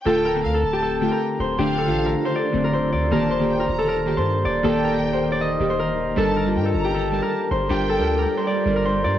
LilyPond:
<<
  \new Staff \with { instrumentName = "Violin section" } { \time 4/4 \key d \phrygian \tempo 4 = 157 g''4 f''8 a''4 g''8 r4 | f''2 r2 | a''4 g''8 bes''4 a''8 r4 | g''2 r2 |
a''4 g''8 bes''4 a''8 r4 | g''2 r2 | }
  \new Staff \with { instrumentName = "Harp" } { \time 4/4 \key d \phrygian a'8 bes'8. a'8 g'16 a'8. bes'8. c''8 | g'8 a'8. bes'8 c''16 d''8. bes'16 c''8 d''8 | bes'8 c''8. bes'8 a'16 bes'8. c''8. d''8 | a'8 bes'8. c''8 d''16 ees''8. c''16 bes'4 |
a'8 bes'8. a'8 g'16 a'8. bes'8. c''8 | g'8 a'8. bes'8 c''16 d''8. bes'16 c''8 d''8 | }
  \new Staff \with { instrumentName = "Ambient pad" } { \time 4/4 \key d \phrygian << { <d d' a'>1~ | <d d' a'>1 | <ees ees' bes'>1~ | <ees ees' bes'>1 |
<g d''>1~ | <g d''>1 | } \\ { f'1~ | f'1 | g'1~ | g'1~ |
g'1~ | g'1 | } >> }
  \new Staff \with { instrumentName = "Synth keys" } { \time 4/4 \key d \phrygian <d a f'>8 r16 <d a c'>4~ <d a c'>16 r8 <d a f'>4 r8 | <d a d'>8 r16 <d a f'>4~ <d a f'>16 r8 <d a c'>4 r8 | <ees bes g'>8 r16 <ees bes g'>4~ <ees bes g'>16 r8 <ees bes g'>4 r8 | <ees bes g'>8 r16 <ees bes g'>4~ <ees bes g'>16 r8 <ees bes g'>4 r8 |
<g d' bes'>8 r16 <g d' f'>4~ <g d' f'>16 r8 <g d' bes'>4 r8 | <g d' f'>8 r16 <g d' bes'>4~ <g d' bes'>16 r8 <g d' bes'>4 r8 | }
  \new Staff \with { instrumentName = "808-style bass" } { \clef bass \time 4/4 \key d \phrygian d,,4 d,8 d,,4~ d,,16 r8. d,,8 | d,,8. a,,8. r4 d,,4 d,8 | ees,,4. ees,,4~ ees,,16 g,8. ees,,8 | ees,,2~ ees,,8 ees,,4. |
g,,4 g,8 g,,4~ g,,16 r8. g,,8 | g,,8. d,8. r4 g,,4 g,8 | }
>>